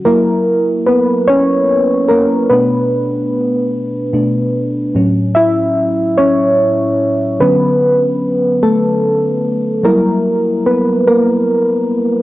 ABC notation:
X:1
M:6/8
L:1/8
Q:3/8=49
K:F#m
V:1 name="FM electric piano"
[^A,^A]2 [B,B] [Cc]2 [A,A] | [B,B]3 z3 | z [Ee]2 [Cc]3 | [B,B]3 [A,A]2 z |
[^A,^A]2 [B,B] [A,A]3 |]
V:2 name="FM electric piano" clef=bass
[F,^A,E] z4 z | [B,,A,D]4 [B,,A,D] z | [A,,F,C] z4 z | [D,F,C]3 z3 |
[F,=G,E]3 z3 |]